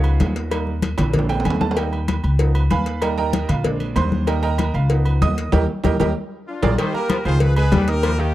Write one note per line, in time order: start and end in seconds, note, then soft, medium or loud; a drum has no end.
0.00 0.17 C#2 loud
0.00 0.48 F3 soft
0.00 0.48 B3 soft
0.00 0.33 C#4 medium
0.00 0.49 D#4 medium
0.00 0.33 F4 medium
0.00 0.33 G#4 medium
0.00 0.32 C#5 medium
0.00 low agogo loud
0.05 high conga soft
0.20 0.93 D#2 loud
0.20 cowbell medium
0.20 high conga medium
0.20 low timbale medium
0.20 low agogo medium
0.36 cowbell medium
0.51 0.72 G3 medium
0.51 0.72 A#3 soft
0.51 0.73 D#4 medium
0.51 cowbell loud
0.51 high conga soft
0.51 low agogo loud
0.67 high conga soft
0.82 cowbell medium
0.82 high conga loud
0.82 low agogo medium
0.98 1.42 A#1 loud
0.98 cowbell medium
0.98 low conga medium
0.98 high timbale loud
0.98 low agogo loud
1.13 1.58 G#3 medium
1.13 1.59 C4 soft
1.13 1.59 D4 medium
1.13 cowbell loud
1.13 high conga soft
1.13 low conga medium
1.19 high timbale medium
1.29 1.45 G5 loud
1.29 high conga soft
1.29 low timbale medium
1.29 low agogo medium
1.40 low timbale medium
1.45 2.18 D#2 loud
1.45 1.60 G#5 medium
1.45 cowbell medium
1.45 high conga medium
1.45 low agogo loud
1.50 low timbale medium
1.61 1.76 A5 loud
1.61 high conga medium
1.61 low timbale loud
1.71 low timbale loud
1.76 1.97 G3 medium
1.76 1.98 A#3 medium
1.76 1.98 D#4 medium
1.76 2.35 G5 medium
1.76 cowbell loud
1.76 high conga soft
1.76 low agogo medium
1.93 high conga soft
1.93 low agogo medium
2.08 cowbell medium
2.08 high conga loud
2.08 low agogo loud
2.24 2.68 C#2 loud
2.24 high conga soft
2.24 low agogo medium
2.39 2.60 F3 medium
2.39 2.60 B3 soft
2.39 2.61 D#4 medium
2.39 cowbell loud
2.39 high conga soft
2.55 high conga soft
2.55 low agogo loud
2.70 3.44 D#2 loud
2.70 3.00 B4 medium
2.70 3.00 F5 medium
2.70 3.00 G#5 medium
2.70 3.00 B5 medium
2.70 cowbell medium
2.70 high conga medium
2.70 low agogo medium
2.86 cowbell medium
3.01 3.46 G3 medium
3.01 3.47 A#3 soft
3.01 3.47 D#4 medium
3.01 3.16 A#4 medium
3.01 3.17 D#5 medium
3.01 3.17 G5 medium
3.01 3.16 A#5 medium
3.01 cowbell loud
3.01 high conga soft
3.01 low agogo loud
3.18 3.47 A#4 medium
3.18 3.47 D#5 medium
3.18 3.47 G5 medium
3.18 3.47 A#5 loud
3.18 high conga soft
3.33 cowbell medium
3.33 high conga loud
3.33 low agogo medium
3.49 3.93 A#1 loud
3.49 3.65 F4 medium
3.49 3.65 F5 medium
3.49 cowbell medium
3.49 low conga medium
3.49 low agogo loud
3.64 4.24 G#3 medium
3.64 4.24 C4 soft
3.64 4.24 D4 medium
3.64 cowbell loud
3.64 high conga soft
3.64 low conga medium
3.80 high conga soft
3.80 low agogo medium
3.96 4.69 D#2 loud
3.96 4.26 C5 medium
3.96 4.25 C6 loud
3.96 cowbell medium
3.96 high conga medium
3.96 low timbale medium
3.96 low agogo loud
4.12 high conga medium
4.27 4.48 G3 medium
4.27 4.48 A#3 soft
4.27 4.49 D#4 medium
4.27 4.42 A#4 medium
4.27 4.42 D#5 medium
4.27 4.42 G5 medium
4.27 4.41 A#5 medium
4.27 cowbell loud
4.27 high conga soft
4.27 low agogo medium
4.43 4.72 A#4 medium
4.43 4.72 D#5 medium
4.43 4.73 G5 medium
4.43 4.72 A#5 loud
4.43 high conga soft
4.43 low agogo medium
4.58 cowbell medium
4.58 high conga loud
4.58 low agogo loud
4.74 5.18 C#2 loud
4.74 4.90 F4 medium
4.74 4.90 F5 medium
4.74 high conga soft
4.74 low agogo medium
4.90 5.35 F3 medium
4.90 5.35 B3 medium
4.90 5.35 D#4 medium
4.90 cowbell loud
4.90 high conga soft
5.05 high conga soft
5.05 low agogo loud
5.21 5.51 D#2 loud
5.21 5.51 D#5 loud
5.21 5.51 D#6 loud
5.21 cowbell medium
5.21 high conga medium
5.21 low timbale medium
5.21 low agogo medium
5.38 cowbell medium
5.52 5.65 D#2 loud
5.52 5.63 G4 loud
5.52 5.63 A#4 loud
5.52 5.63 D#5 loud
5.52 cowbell loud
5.52 high conga loud
5.52 high timbale loud
5.84 5.96 D#2 loud
5.84 5.95 G4 loud
5.84 5.94 A#4 medium
5.84 5.94 D#5 loud
5.84 cowbell loud
5.84 high conga loud
5.84 high timbale loud
6.00 6.11 D#2 loud
6.00 6.10 G4 loud
6.00 6.10 A#4 medium
6.00 6.10 D#5 medium
6.00 cowbell loud
6.00 high conga loud
6.00 high timbale loud
6.47 6.77 D4 medium
6.47 6.76 F4 medium
6.63 6.75 A#1 loud
6.63 6.73 G#4 medium
6.63 6.73 A#4 medium
6.63 6.73 D5 loud
6.63 cowbell loud
6.63 high conga loud
6.63 high timbale loud
6.78 6.95 D#3 loud
6.78 6.91 G3 medium
6.78 6.93 G4 medium
6.78 6.91 G4 medium
6.78 6.94 C5 loud
6.78 6.92 G5 medium
6.78 cowbell loud
6.78 low agogo medium
6.94 7.20 A#3 medium
6.94 7.23 G4 medium
6.94 7.20 A#4 medium
6.94 7.23 A#4 loud
6.94 7.20 A#5 medium
6.94 high conga soft
6.94 low agogo medium
7.09 7.18 F3 medium
7.09 cowbell medium
7.09 high conga loud
7.09 low agogo loud
7.25 7.69 C#2 loud
7.25 7.50 D#3 medium
7.25 7.51 F3 medium
7.25 7.51 F4 medium
7.25 7.40 G#4 medium
7.25 7.40 C5 loud
7.25 7.51 F5 medium
7.25 high conga soft
7.25 low agogo loud
7.40 7.56 G#4 medium
7.40 7.56 B4 loud
7.40 cowbell loud
7.40 high conga soft
7.56 7.82 G#3 medium
7.56 7.86 G#4 medium
7.56 7.83 G#4 medium
7.56 7.86 B4 loud
7.56 7.83 G#5 medium
7.56 high conga soft
7.56 low agogo loud
7.72 8.34 D#2 loud
7.72 7.88 G3 medium
7.72 cowbell medium
7.72 high conga medium
7.72 low timbale medium
7.72 low agogo medium
7.88 8.13 D#4 medium
7.88 8.19 G4 medium
7.88 8.20 A#4 loud
7.88 8.13 D#5 medium
7.88 8.14 D#6 medium
7.88 cowbell medium
7.88 high conga soft
8.03 8.12 F3 medium
8.03 cowbell loud
8.03 high conga soft
8.03 low agogo loud
8.19 8.34 D#3 medium
8.19 8.34 A#3 medium
8.19 8.34 D#4 medium
8.19 8.34 G4 loud
8.19 8.34 A#4 medium
8.19 8.34 A#5 medium
8.19 high conga soft